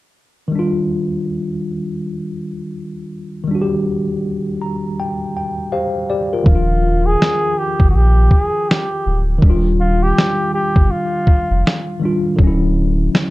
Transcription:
0.48 D#3 G3
0.55 D4 F4
3.44 D#3 G3
3.51 D4 F#4
3.62 G4
4.62 A#5
5.00 G5
5.37 G5
5.72 G4 C5 F5
6.10 G4 D5
6.33 F4 A#4
6.44 D#1 D#3 F3 F4, kick
6.51 D4 F4
7.06 G#4
7.22 snare
7.58 G4
7.80 G1, kick
7.90 F#4
7.95 A#1 G4
8.31 G#4, kick
8.69 G4, snare
9.06 D1
9.38 D#3 G3, kick
9.43 D#1 D4
9.50 F4
9.80 F4
10.03 G4
10.18 snare
10.54 G4
10.76 G1, kick
10.91 F4
11.27 kick
11.51 F1
11.67 snare
12.00 D#3 G3 D4
12.05 F4
12.36 D1 D3 F#3, kick
12.44 C#4 E4
13.15 snare

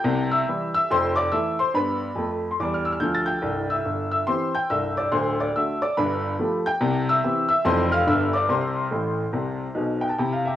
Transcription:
Already playing: G5 G6
0.04 C2 C3
0.31 E5 E6
0.48 E3 G3 E4
0.75 E5 E6
0.91 F1 F2 C5 C6
1.16 D5 D6
1.32 E3 A3 A4 E5 E6
1.59 C5 C6
1.74 G2 B3 B4 B5
2.16 F2 A3
2.51 C6
2.60 E2 G3 D6
2.74 F6
2.85 E6
2.93 F6
3.00 D2 F3 G6
3.15 A6
3.26 G5 G6
3.42 C1 C2
3.70 E5 E6
3.85 G1
4.11 E5 E6
4.27 E3 C4 G4 C5 C6
4.55 G5 G6
4.70 C1 C2 E5 E6
4.97 D5 D6
5.12 D1 D2 C5 C6
5.40 D5 D6
5.56 D3 A3 F#4 E5 E6
5.82 D5 D6
5.97 G1 G2 B4 B5
6.39 F3 A3 G4
6.66 G5 G6
6.81 C2 C3
7.09 E5 E6
7.24 E3 C4 G4
7.49 E5 E6
7.65 F1 F2 E3 C4 A4 C5 C6
7.92 F5 F6
8.07 G1 G2 D3 B3 G4 E5 E6
8.33 D5 D6
8.49 C2 C3 C5 C6
8.91 A1 A2
9.33 C2 C3
9.75 B1 B2
10.01 G5
10.09 A5
10.18 C3 E4 G5
10.33 F5
10.45 G4 E5

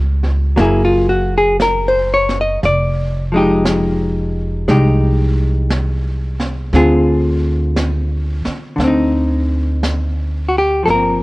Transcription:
Already playing: C#2 G3 D4 F4 A#4
0.23 snare
0.56 F#1 F#3 A#3 E4, brush sweep, snare
0.61 G#4
0.85 F4
1.10 F#4
1.38 G#4
1.60 A#4, brush sweep, snare, hi-hat pedal
1.88 C5
2.14 C#5
2.29 snare
2.41 D#5
2.63 F1 D5, brush sweep, snare
3.32 F3 G#3 D#4
3.37 G4
3.65 brush sweep, snare, hi-hat pedal
4.68 C2 G#3 D#4 G4, brush sweep, snare
5.70 brush sweep, snare, hi-hat pedal
6.39 snare
6.72 D2 D3 C4 F4 G#4, brush sweep, snare
7.77 brush sweep, snare, hi-hat pedal
8.45 muted upright bass stroke, snare
8.76 D2 D3, brush sweep, snare
8.84 C4 D#4
9.83 brush sweep, snare, hi-hat pedal
10.48 F#4
10.58 G4
10.83 F3 A4, brush sweep, snare
10.87 G1 A#3 A#4
10.94 C4

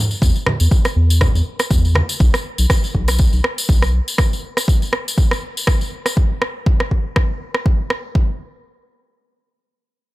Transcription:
0.11 tambourine
0.22 E2, kick, tambourine
0.36 tambourine
0.46 cross-stick, high conga, low conga
0.60 E2, tambourine
0.71 kick, tambourine
0.85 cross-stick, tambourine
0.96 E2
1.10 tambourine
1.21 kick, cross-stick, tambourine, low conga
1.35 E2, tambourine
1.59 cross-stick, tambourine
1.71 E2, kick, tambourine
1.85 tambourine
1.95 cross-stick, high conga
2.09 tambourine
2.20 B1, kick, tambourine
2.34 cross-stick, tambourine
2.58 B1, tambourine
2.70 kick, cross-stick, tambourine
2.84 tambourine
2.95 B1, kick
3.08 cross-stick, tambourine
3.18 kick, tambourine
3.33 B1, tambourine
3.44 cross-stick
3.58 tambourine
3.69 B1, kick, tambourine
3.82 cross-stick, tambourine
4.08 tambourine
4.18 kick, cross-stick, tambourine
4.33 tambourine
4.57 cross-stick, tambourine
4.68 kick, tambourine
4.82 tambourine
4.93 cross-stick
5.08 tambourine
5.18 kick, tambourine
5.31 cross-stick, tambourine
5.57 tambourine
5.67 kick, cross-stick
5.81 tambourine
6.06 cross-stick, tambourine
6.17 kick
6.42 cross-stick
6.66 kick
6.80 cross-stick
6.91 kick
7.16 kick, cross-stick
7.54 cross-stick
7.66 kick
7.90 cross-stick
8.15 kick

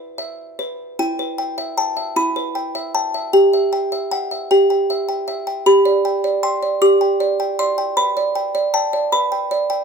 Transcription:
Already playing: E4 B4
0.18 E5
0.59 B4
0.99 E4 G5
1.19 B4
1.38 G5
1.58 E5
1.77 G5 A5
1.97 E5
2.16 E4 B5
2.36 B4
2.55 G5
2.75 E5
2.95 G5 A5
3.14 E5
3.33 G4 G5
3.53 E5
3.73 G5
3.92 E5
4.11 F#5 G5
4.31 E5
4.51 G4 G5
4.70 G5
4.90 E5
5.09 G5
5.28 E5
5.47 G5
5.66 G4 B5
5.85 D5
6.05 G5
6.24 D5
6.43 G5 C6
6.63 D5
6.82 G4 D6
7.01 G5
7.20 D5
7.40 G5
7.59 D5 C6
7.78 G5
7.97 B4 B5
8.17 D5
8.35 G5
8.55 D5
8.74 G5 A5
8.93 D5
9.12 B4 B5
9.32 G5
9.51 D5
9.70 G5

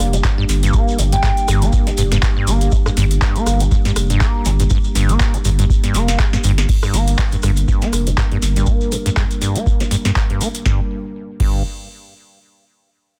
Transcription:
Already playing: G3 A#3 D4 G4
0.00 F1
0.13 G2, closed hi-hat, shekere
0.24 G2, kick, clap, shekere
0.38 G2
0.49 G1, snare, open hi-hat, shekere
0.63 G2, closed hi-hat, shekere
0.73 A#3, kick, shekere
0.88 shekere
0.99 G1 G2, open hi-hat, shekere
1.12 G2 G5, closed hi-hat, shekere
1.23 G2, kick, clap, shekere
1.37 closed hi-hat, shekere
1.48 G1 G2, cross-stick, open hi-hat, shekere
1.62 A#3, closed hi-hat, shekere
1.73 kick, shekere
1.87 G2, snare, closed hi-hat, shekere
1.97 F1 G2, open hi-hat, shekere
2.12 G2, snare, closed hi-hat, shekere
2.23 kick, clap, shekere
2.37 G2
2.47 G1 A#3, open hi-hat, shekere
2.61 closed hi-hat, shekere
2.72 G2, kick, shekere
2.86 G2, cross-stick, shekere
2.97 G1 G2, snare, open hi-hat, shekere
3.11 closed hi-hat, shekere
3.22 G2, kick, clap, shekere
3.36 A#3, closed hi-hat, shekere
3.47 G1, cross-stick, open hi-hat, shekere
3.60 G2, closed hi-hat, shekere
3.71 G2, kick, shekere
3.85 G2, snare, closed hi-hat, shekere
3.96 F1, cross-stick, open hi-hat, shekere
4.10 G2, closed hi-hat, shekere
4.21 A#3, kick, clap, shekere
4.45 G1 G2, snare, open hi-hat, shekere
4.59 G2, closed hi-hat, shekere
4.70 G2, kick, shekere
4.84 shekere
4.95 G1 G2, snare, open hi-hat, shekere
5.09 A#3, closed hi-hat, shekere
5.20 kick, clap, shekere
5.34 G2, closed hi-hat, shekere
5.45 G1 G2, open hi-hat, shekere
5.59 G2, closed hi-hat, shekere
5.70 kick, shekere
5.84 G2, snare, closed hi-hat, shekere
5.94 F1 A#3, snare, open hi-hat, shekere
6.08 snare, closed hi-hat, shekere
6.19 G2, kick, clap, shekere
6.33 G2, snare, shekere
6.44 G1 G2, open hi-hat, shekere
6.58 snare, closed hi-hat, shekere
6.69 G3 A#3 D4 A#4, kick, crash, shekere
6.82 G2, cross-stick, shekere
6.94 G1 A#3, snare, open hi-hat, shekere
7.07 closed hi-hat, shekere
7.18 G2, kick, clap, shekere
7.32 G2, closed hi-hat, shekere
7.42 G1 G2, cross-stick, open hi-hat, shekere
7.56 closed hi-hat, shekere
7.68 G2, kick, shekere
7.82 A#3, snare, closed hi-hat, shekere
7.93 F1, cross-stick, open hi-hat, shekere
8.07 G2, closed hi-hat, shekere
8.18 G2, kick, clap, shekere
8.32 G2, closed hi-hat
8.42 G1, snare, open hi-hat, shekere
8.56 G2, closed hi-hat, shekere
8.66 A#3, kick, shekere
8.81 shekere
8.92 G2, open hi-hat, shekere
9.06 G2, closed hi-hat, shekere
9.17 G2, kick, clap, shekere
9.31 closed hi-hat, shekere
9.42 G2, open hi-hat, shekere
9.55 A#3, closed hi-hat, shekere
9.66 kick, shekere
9.80 G2, snare, closed hi-hat, shekere
9.91 G2, open hi-hat, shekere
10.05 G2, snare, closed hi-hat, shekere
10.16 kick, clap, shekere
10.30 G2, closed hi-hat
10.41 A#3, open hi-hat, shekere
10.54 closed hi-hat, shekere
10.65 G1 G2 G3 A#3 D4 A#4, kick, snare
11.40 G1 G2, kick, crash

